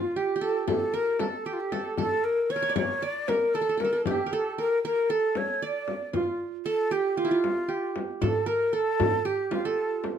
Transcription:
Already playing: F4
0.16 G4
0.36 G4
0.41 A4
0.68 A4, frame drum
0.94 A#4
1.19 A4, frame drum
1.46 G4
1.53 F4
1.60 G4
1.72 A4, frame drum
1.97 A4, frame drum
2.24 A#4
2.50 C#5
2.56 A#4
2.63 C#5
2.69 D5
2.76 C#5, frame drum
3.02 D5
3.28 A#4, frame drum
3.54 A4
3.61 A4
3.69 A4
3.77 A4 A#4, frame drum
3.85 A4
3.93 A4
4.06 G4, frame drum
4.26 A#4
4.33 A4
4.58 A#4
4.84 A#4
5.10 A4
5.35 C#5, frame drum
5.62 D5
5.88 frame drum
6.13 F4, frame drum
6.66 A4
6.91 G4
7.17 F4
7.25 E4
7.31 F4
7.44 frame drum
7.69 G4
7.96 frame drum
8.21 A4, frame drum, darbuka dum
8.46 A#4
8.73 A4, darbuka ka
9.00 frame drum, darbuka dum
9.25 G4
9.51 F4, darbuka tek, frame drum
9.65 A4, darbuka ka
10.04 darbuka tek, frame drum

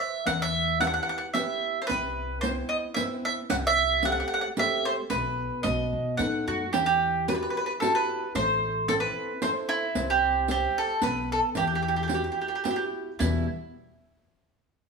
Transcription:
Already playing: B4 C5 E5
0.00 E5
0.25 E2 E3 F#5, riq
0.42 E5
0.80 E4 G4 B4 F#5, riq
0.87 F#5
0.94 F#5
1.03 F#5
1.09 F#5
1.18 F#5
1.34 E4 G4 B4 E5, riq
1.82 C5
1.87 C2 C3 B4, riq
2.41 B3 C4 E4 C5, riq
2.69 D#5
2.94 B3 C4 E4 E5, riq
3.25 E5
3.50 C2 C3 F#5, riq
3.67 E5
4.03 A3 C4 G4 F#5, riq
4.12 F#5
4.20 F#5
4.28 F#5
4.34 F#5
4.41 F#5
4.57 A3 C4 G4 E5, riq
4.85 C5
5.10 B1 B2 B4, riq
5.63 B1 B2 D#5, riq
5.93 B2
6.17 A2 A3 B3 D#4 F#5, riq
6.47 F#2 F#4
6.73 E2 E3 G4, riq
6.86 G4
7.28 E4 F#4 G4 B4, riq
7.35 B4
7.43 B4
7.50 B4
7.57 B4
7.66 B4
7.80 E4 F#4 G4 A4, riq
7.95 B4
8.35 A1 A3 C5, riq
8.88 C4 E4 A4, riq
9.00 B4
9.42 E4 A4 C5, riq
9.69 E4
9.95 C2 C4, riq
10.10 G4
10.48 G4 C5 E5, riq
10.78 A4
11.02 B1 B3 B4, riq
11.32 A4
11.55 E2 E3 G4, riq
11.67 G4
11.75 G4
11.82 G4
11.88 G4
11.96 G4
12.03 G4
12.08 E4 F#4 G4, riq
12.14 G4
12.24 G4
12.32 G4
12.41 G4
12.48 G4
12.55 G4
12.64 E4 F#4 G4, riq
12.71 G4
12.76 G4
13.19 E2 B2 G3 B3 E4, riq

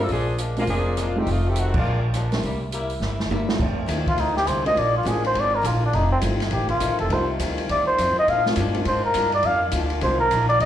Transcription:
0.01 F3 A#3 D4 A4
0.09 A#1 A#2 F3 G#3 A#3 D4 G#4, kick, open hi-hat
0.38 A#2 F3 G#3 D4, closed hi-hat
0.56 G#3 A#3 C4 D4 F4, open hi-hat
0.67 F1 A#2 F3 G#3 A#3 D4 G#4, kick, open hi-hat
0.97 A#2 F3 G#3 D4, cross-stick, closed hi-hat
1.01 A#3 D4 F4
1.15 D#3 G3 G#3 A3 C4 D#4 F4 G4
1.27 F1 F2 D#3 A3 C4, kick, open hi-hat
1.31 C4 D#4 F4
1.47 D#3 A3 C4 G4
1.56 F2 D#3 A3 C4 F#4, closed hi-hat
1.74 B1 D4, kick, crash
1.78 G#3 A#3 F4
1.85 A#1 A#2 F3 G#3 D4
2.14 A#2 F3 G#3 D4, cross-stick, closed hi-hat
2.32 G3 A#3 C4 D4 E4, snare, open hi-hat
2.43 C2 C3 G3 A#3 E4, kick, open hi-hat
2.72 C3 G3 A#3 E4, closed hi-hat
2.90 open hi-hat
2.99 G1 C3 G3, snare
3.04 A#3 E4
3.20 snare
3.29 G1 C3 G3 A#3 E4, high tom
3.48 G3 A3 C4 D#4 F4, snare
3.58 F2 D#3 A3 C4 F4, kick, crash
3.62 C4
3.86 D#2 F2 D#3 A3 C4, kick, hi-hat pedal, ride
4.07 F4, kick, ride
4.16 D2 F2 D#3 A3 C4 D#4, kick, ride
4.37 G4, snare
4.46 C2 F2 D#3 A3 C4 C5, kick, hi-hat pedal, ride
4.65 G#3 A#3 C4 D4 F4 D#5, ride
4.74 A#1 A#2 F3 G#3 D4, kick, ride
4.78 D3 G#3 A#3 D5
4.97 F4
5.03 A1 A#2 F3 G#3 A#3 C4 D4 F4, kick, hi-hat pedal, ride
5.07 G#4
5.24 C5, ride
5.34 G#1 A#2 F3 G#3 D4, kick, ride
5.40 D5
5.55 A#4
5.62 A#1 A#2 F3 G#3 D4, kick, hi-hat pedal, ride
5.67 F4
5.86 D4
5.92 F1 F2 D#3 A3 C4 D#4 F4, kick, ride
6.12 C4
6.21 G1 F2 D#3 G3 A3 C4 D#4 F4, kick, hi-hat pedal, ride
6.40 snare, ride
6.50 A1 F2 D#3 A3 C4 G4, kick, ride
6.68 F4, ride
6.80 A#1 F2 D#3 A3 C4, kick, hi-hat pedal, ride
6.89 A1
6.99 F1 A4, ride
7.09 C2 F2 D#3 G3 A3 C4 D#4, kick, ride
7.13 F4 C5
7.39 D2 F2 D#3 A3 C4, kick, hi-hat pedal, ride
7.58 ride
7.69 D#2 F2 D#3 A3 C4 D5, kick, ride
7.87 C5, muted upright bass stroke
7.98 F2 D#3 A3 C4, kick, hi-hat pedal, ride
8.18 D#5, muted upright bass stroke
8.27 A#2 D3 F3 G#3 A#3 F5, kick, ride
8.32 D4
8.46 G#3 A#3 C4 D4 F4, snare
8.56 G2 A#2 F3, kick, hi-hat pedal, ride
8.60 G#3 D4
8.74 G#3 A#3 C4 D4 F4, ride
8.85 G#2 A#2 F3 G#3 D4 C5, kick, ride
9.05 A#4
9.14 G2 A#2 F3, kick, hi-hat pedal, ride
9.18 G#3 D4
9.32 D5, ride
9.43 F2 A#2 F3 G#3 F5, kick, ride
9.48 D4
9.71 D2 A#2 F3 G#3 D4, kick, hi-hat pedal, ride
9.90 ride
10.01 C2 A#2 F3 G#3 A#3 C4 D4 F4 C5, kick, ride
10.20 A#4
10.30 A#1 A#2 F3 G#3 D4, kick, hi-hat pedal, ride
10.49 D5, ride
10.59 F1 F2 D#3 A3 C4 D#5, kick, ride

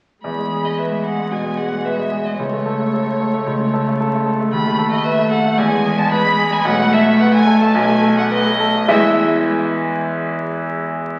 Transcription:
0.23 E2 G#3 B5
0.38 G#3
0.52 G#4
0.64 G#3 D#5
0.78 B4 E5
0.91 G#3
1.05 G#4 F#5
1.18 G#3
1.31 B2 G#5
1.44 G#3
1.57 G#4 F#5
1.71 G#3
1.85 B4 E5
1.98 G#3
2.11 G#4
2.25 G#3 D#5
2.38 C#2 A3 C#5
2.53 A3
2.66 A4
2.80 A3
2.94 A4
3.07 A3
3.20 A4
3.33 A3
3.46 C#2
3.60 C#3
3.73 A4
3.87 A3
4.01 A4
4.13 A3
4.26 A4
4.40 A3
4.52 D#2 B5
4.66 A3
4.78 A4
4.91 A3 D#5
5.04 B4 E5
5.18 A3
5.31 A4 F#5
5.46 A3
5.58 E2 G#3 G#5
5.72 G#3
5.86 G#4
5.98 G#3 A5
6.12 B4 B5
6.25 G#3
6.38 G#4
6.51 G#3 G#5
6.65 B1 A3 F#5
6.79 A3
6.93 A4 E5
7.07 A3
7.21 B4 F#5
7.33 A3 G#5
7.47 A4
7.61 A3 A5
7.75 B1 G#5
7.89 A3
8.02 A4
8.17 A3 F#5
8.31 B4 D#5
8.46 A3
8.60 A4
8.75 A3
8.88 E2 E3 G#3 E4 B4 E5

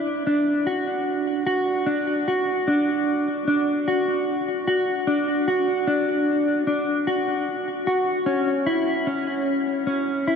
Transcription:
Already playing: D4
0.27 D4
0.67 F#4
1.47 F#4
1.86 D4
2.28 F#4
2.68 D4
3.48 D4
3.88 F#4
4.68 F#4
5.07 D4
5.48 F#4
5.87 D4
6.67 D4
7.07 F#4
7.87 F#4
8.26 C#4
8.66 E4
9.07 C#4
9.87 C#4
10.27 E4

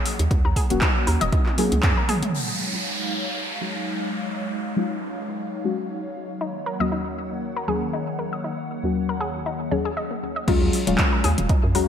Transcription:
Already playing: F#3 A#3 C#5 F#5
0.06 open hi-hat
0.19 D#2, closed hi-hat
0.31 D#2, kick, closed hi-hat
0.45 D#2 A#4
0.56 G#4, kick, open hi-hat
0.70 D#1 F#3 A#3 C#4 F#4, closed hi-hat
0.81 D#4, kick, clap, closed hi-hat
1.07 D#2 A#4, open hi-hat
1.21 D#1 D#5, closed hi-hat
1.32 D#4, kick, closed hi-hat, high tom
1.46 clap, high tom
1.58 F#3 A#3 C#4 G#4, open hi-hat, high tom
1.72 C#2, closed hi-hat, mid tom
1.83 F#2, kick, clap, closed hi-hat, mid tom
1.97 A#4
2.09 G#4, mid tom, open hi-hat
2.23 closed hi-hat, mid tom
2.34 F#3 G#3 D#4 C#5 F5, downlifter
2.73 F#3 G#3 C#4 D#4 F4
3.61 F#3 G#3 C#4 D#4 F#4
4.76 F#3 G#3 C#4 D#4 F4
5.64 F#3 G#3 C#4 D#4 F#4
6.41 D#3 A#3 D#4 F#5
6.66 A#4
6.80 D#2 F#3 A#3 C#4 F#4 D#5
6.92 D#4
7.57 A#4
7.68 D#2 F#3 A#3 C#4 G#4
7.93 D#4
8.19 A#4
8.33 D#5
8.44 D#4
8.83 D#2 F#3 A#3 C#4 F#4
9.09 A#4
9.21 G#4
9.46 D#4
9.71 D#2 F#3 A#3 C#4 G#4
9.85 G#4
9.97 D#5
10.11 A#3
10.36 D#5
10.47 D#2 F#3 G#3 C#4 D#4 F4 C#5 F5, kick, closed hi-hat, crash
10.62 D#2
10.73 open hi-hat
10.87 D#1 F#3 G#3 C#4 F4, closed hi-hat
10.98 kick, clap, closed hi-hat
11.13 A#4
11.24 D#2 G#4, open hi-hat
11.38 D#1, closed hi-hat
11.49 D#4, kick, closed hi-hat
11.64 F#2
11.75 D#2 F#3 G#3 C#4 F#4 A#4, open hi-hat

